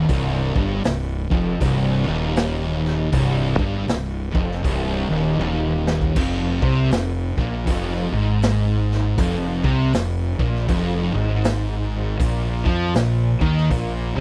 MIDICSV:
0, 0, Header, 1, 4, 480
1, 0, Start_track
1, 0, Key_signature, -3, "minor"
1, 0, Tempo, 755668
1, 60, Time_signature, 4, 2, 24, 8
1, 9022, End_track
2, 0, Start_track
2, 0, Title_t, "Distorted electric guitar"
2, 0, Program_c, 0, 30
2, 60, Note_on_c, 0, 36, 105
2, 345, Note_off_c, 0, 36, 0
2, 360, Note_on_c, 0, 43, 102
2, 532, Note_off_c, 0, 43, 0
2, 535, Note_on_c, 0, 36, 72
2, 773, Note_off_c, 0, 36, 0
2, 833, Note_on_c, 0, 41, 104
2, 1015, Note_off_c, 0, 41, 0
2, 1022, Note_on_c, 0, 36, 101
2, 1307, Note_off_c, 0, 36, 0
2, 1311, Note_on_c, 0, 39, 114
2, 1976, Note_off_c, 0, 39, 0
2, 1987, Note_on_c, 0, 36, 107
2, 2271, Note_off_c, 0, 36, 0
2, 2283, Note_on_c, 0, 43, 106
2, 2462, Note_off_c, 0, 43, 0
2, 2471, Note_on_c, 0, 36, 70
2, 2703, Note_off_c, 0, 36, 0
2, 2761, Note_on_c, 0, 41, 99
2, 2942, Note_off_c, 0, 41, 0
2, 2948, Note_on_c, 0, 36, 105
2, 3232, Note_off_c, 0, 36, 0
2, 3244, Note_on_c, 0, 39, 115
2, 3422, Note_off_c, 0, 39, 0
2, 3429, Note_on_c, 0, 39, 111
2, 3904, Note_off_c, 0, 39, 0
2, 3907, Note_on_c, 0, 41, 104
2, 4193, Note_off_c, 0, 41, 0
2, 4201, Note_on_c, 0, 48, 100
2, 4383, Note_off_c, 0, 48, 0
2, 4395, Note_on_c, 0, 41, 79
2, 4627, Note_off_c, 0, 41, 0
2, 4694, Note_on_c, 0, 46, 95
2, 4869, Note_off_c, 0, 46, 0
2, 4877, Note_on_c, 0, 41, 104
2, 5158, Note_off_c, 0, 41, 0
2, 5171, Note_on_c, 0, 44, 112
2, 5827, Note_off_c, 0, 44, 0
2, 5834, Note_on_c, 0, 41, 112
2, 6116, Note_off_c, 0, 41, 0
2, 6125, Note_on_c, 0, 48, 102
2, 6304, Note_off_c, 0, 48, 0
2, 6315, Note_on_c, 0, 41, 72
2, 6546, Note_off_c, 0, 41, 0
2, 6602, Note_on_c, 0, 46, 98
2, 6782, Note_off_c, 0, 46, 0
2, 6795, Note_on_c, 0, 41, 107
2, 7075, Note_off_c, 0, 41, 0
2, 7085, Note_on_c, 0, 44, 108
2, 7742, Note_off_c, 0, 44, 0
2, 7750, Note_on_c, 0, 46, 106
2, 8031, Note_off_c, 0, 46, 0
2, 8045, Note_on_c, 0, 53, 104
2, 8221, Note_off_c, 0, 53, 0
2, 8224, Note_on_c, 0, 46, 79
2, 8457, Note_off_c, 0, 46, 0
2, 8518, Note_on_c, 0, 51, 102
2, 8697, Note_off_c, 0, 51, 0
2, 8704, Note_on_c, 0, 46, 108
2, 8986, Note_off_c, 0, 46, 0
2, 8997, Note_on_c, 0, 48, 109
2, 9022, Note_off_c, 0, 48, 0
2, 9022, End_track
3, 0, Start_track
3, 0, Title_t, "Fingered electric bass"
3, 0, Program_c, 1, 33
3, 56, Note_on_c, 1, 24, 108
3, 331, Note_off_c, 1, 24, 0
3, 353, Note_on_c, 1, 31, 104
3, 527, Note_off_c, 1, 31, 0
3, 541, Note_on_c, 1, 24, 76
3, 814, Note_off_c, 1, 24, 0
3, 833, Note_on_c, 1, 29, 87
3, 1008, Note_off_c, 1, 29, 0
3, 1021, Note_on_c, 1, 24, 99
3, 1295, Note_off_c, 1, 24, 0
3, 1316, Note_on_c, 1, 27, 97
3, 1959, Note_off_c, 1, 27, 0
3, 1985, Note_on_c, 1, 24, 104
3, 2258, Note_off_c, 1, 24, 0
3, 2465, Note_on_c, 1, 24, 75
3, 2739, Note_off_c, 1, 24, 0
3, 2761, Note_on_c, 1, 29, 93
3, 2934, Note_off_c, 1, 29, 0
3, 2952, Note_on_c, 1, 24, 100
3, 3223, Note_off_c, 1, 24, 0
3, 3235, Note_on_c, 1, 27, 97
3, 3411, Note_off_c, 1, 27, 0
3, 3420, Note_on_c, 1, 27, 101
3, 3879, Note_off_c, 1, 27, 0
3, 3915, Note_on_c, 1, 29, 96
3, 4185, Note_off_c, 1, 29, 0
3, 4204, Note_on_c, 1, 36, 100
3, 4377, Note_off_c, 1, 36, 0
3, 4383, Note_on_c, 1, 29, 72
3, 4659, Note_off_c, 1, 29, 0
3, 4684, Note_on_c, 1, 34, 96
3, 4857, Note_off_c, 1, 34, 0
3, 4872, Note_on_c, 1, 29, 102
3, 5144, Note_off_c, 1, 29, 0
3, 5157, Note_on_c, 1, 32, 92
3, 5801, Note_off_c, 1, 32, 0
3, 5831, Note_on_c, 1, 29, 109
3, 6103, Note_off_c, 1, 29, 0
3, 6124, Note_on_c, 1, 36, 96
3, 6296, Note_off_c, 1, 36, 0
3, 6307, Note_on_c, 1, 29, 69
3, 6580, Note_off_c, 1, 29, 0
3, 6603, Note_on_c, 1, 34, 93
3, 6775, Note_off_c, 1, 34, 0
3, 6790, Note_on_c, 1, 29, 100
3, 7061, Note_off_c, 1, 29, 0
3, 7082, Note_on_c, 1, 32, 91
3, 7720, Note_off_c, 1, 32, 0
3, 7748, Note_on_c, 1, 34, 109
3, 8019, Note_off_c, 1, 34, 0
3, 8039, Note_on_c, 1, 41, 98
3, 8211, Note_off_c, 1, 41, 0
3, 8225, Note_on_c, 1, 34, 70
3, 8496, Note_off_c, 1, 34, 0
3, 8518, Note_on_c, 1, 39, 98
3, 8690, Note_off_c, 1, 39, 0
3, 8704, Note_on_c, 1, 34, 100
3, 8975, Note_off_c, 1, 34, 0
3, 8996, Note_on_c, 1, 36, 101
3, 9022, Note_off_c, 1, 36, 0
3, 9022, End_track
4, 0, Start_track
4, 0, Title_t, "Drums"
4, 56, Note_on_c, 9, 46, 58
4, 58, Note_on_c, 9, 36, 104
4, 119, Note_off_c, 9, 46, 0
4, 122, Note_off_c, 9, 36, 0
4, 353, Note_on_c, 9, 36, 111
4, 417, Note_off_c, 9, 36, 0
4, 533, Note_on_c, 9, 46, 65
4, 542, Note_on_c, 9, 38, 124
4, 597, Note_off_c, 9, 46, 0
4, 606, Note_off_c, 9, 38, 0
4, 834, Note_on_c, 9, 36, 117
4, 897, Note_off_c, 9, 36, 0
4, 1021, Note_on_c, 9, 46, 62
4, 1022, Note_on_c, 9, 36, 100
4, 1085, Note_off_c, 9, 46, 0
4, 1086, Note_off_c, 9, 36, 0
4, 1500, Note_on_c, 9, 46, 66
4, 1509, Note_on_c, 9, 38, 116
4, 1563, Note_off_c, 9, 46, 0
4, 1572, Note_off_c, 9, 38, 0
4, 1808, Note_on_c, 9, 38, 33
4, 1871, Note_off_c, 9, 38, 0
4, 1985, Note_on_c, 9, 46, 67
4, 1986, Note_on_c, 9, 36, 117
4, 2049, Note_off_c, 9, 36, 0
4, 2049, Note_off_c, 9, 46, 0
4, 2280, Note_on_c, 9, 36, 106
4, 2343, Note_off_c, 9, 36, 0
4, 2465, Note_on_c, 9, 46, 61
4, 2474, Note_on_c, 9, 38, 112
4, 2529, Note_off_c, 9, 46, 0
4, 2538, Note_off_c, 9, 38, 0
4, 2762, Note_on_c, 9, 36, 111
4, 2825, Note_off_c, 9, 36, 0
4, 2868, Note_on_c, 9, 38, 34
4, 2931, Note_off_c, 9, 38, 0
4, 2950, Note_on_c, 9, 36, 112
4, 2952, Note_on_c, 9, 46, 58
4, 3014, Note_off_c, 9, 36, 0
4, 3016, Note_off_c, 9, 46, 0
4, 3435, Note_on_c, 9, 48, 68
4, 3498, Note_off_c, 9, 48, 0
4, 3731, Note_on_c, 9, 38, 90
4, 3795, Note_off_c, 9, 38, 0
4, 3819, Note_on_c, 9, 36, 93
4, 3883, Note_off_c, 9, 36, 0
4, 3912, Note_on_c, 9, 49, 106
4, 3913, Note_on_c, 9, 36, 108
4, 3976, Note_off_c, 9, 36, 0
4, 3976, Note_off_c, 9, 49, 0
4, 4206, Note_on_c, 9, 36, 118
4, 4270, Note_off_c, 9, 36, 0
4, 4391, Note_on_c, 9, 46, 62
4, 4400, Note_on_c, 9, 38, 109
4, 4455, Note_off_c, 9, 46, 0
4, 4463, Note_off_c, 9, 38, 0
4, 4686, Note_on_c, 9, 36, 102
4, 4749, Note_off_c, 9, 36, 0
4, 4871, Note_on_c, 9, 46, 64
4, 4873, Note_on_c, 9, 36, 100
4, 4935, Note_off_c, 9, 46, 0
4, 4936, Note_off_c, 9, 36, 0
4, 5350, Note_on_c, 9, 46, 64
4, 5358, Note_on_c, 9, 38, 116
4, 5413, Note_off_c, 9, 46, 0
4, 5422, Note_off_c, 9, 38, 0
4, 5660, Note_on_c, 9, 38, 30
4, 5723, Note_off_c, 9, 38, 0
4, 5831, Note_on_c, 9, 36, 103
4, 5832, Note_on_c, 9, 46, 68
4, 5894, Note_off_c, 9, 36, 0
4, 5895, Note_off_c, 9, 46, 0
4, 6124, Note_on_c, 9, 36, 109
4, 6188, Note_off_c, 9, 36, 0
4, 6310, Note_on_c, 9, 46, 69
4, 6318, Note_on_c, 9, 38, 123
4, 6373, Note_off_c, 9, 46, 0
4, 6382, Note_off_c, 9, 38, 0
4, 6603, Note_on_c, 9, 36, 104
4, 6666, Note_off_c, 9, 36, 0
4, 6705, Note_on_c, 9, 38, 32
4, 6769, Note_off_c, 9, 38, 0
4, 6786, Note_on_c, 9, 46, 61
4, 6788, Note_on_c, 9, 36, 108
4, 6850, Note_off_c, 9, 46, 0
4, 6852, Note_off_c, 9, 36, 0
4, 7266, Note_on_c, 9, 46, 67
4, 7275, Note_on_c, 9, 38, 121
4, 7330, Note_off_c, 9, 46, 0
4, 7339, Note_off_c, 9, 38, 0
4, 7748, Note_on_c, 9, 36, 116
4, 7751, Note_on_c, 9, 46, 61
4, 7811, Note_off_c, 9, 36, 0
4, 7815, Note_off_c, 9, 46, 0
4, 8040, Note_on_c, 9, 36, 107
4, 8103, Note_off_c, 9, 36, 0
4, 8222, Note_on_c, 9, 46, 59
4, 8231, Note_on_c, 9, 38, 109
4, 8286, Note_off_c, 9, 46, 0
4, 8294, Note_off_c, 9, 38, 0
4, 8519, Note_on_c, 9, 36, 109
4, 8582, Note_off_c, 9, 36, 0
4, 8623, Note_on_c, 9, 38, 34
4, 8686, Note_off_c, 9, 38, 0
4, 8706, Note_on_c, 9, 36, 104
4, 8709, Note_on_c, 9, 46, 58
4, 8770, Note_off_c, 9, 36, 0
4, 8772, Note_off_c, 9, 46, 0
4, 9022, End_track
0, 0, End_of_file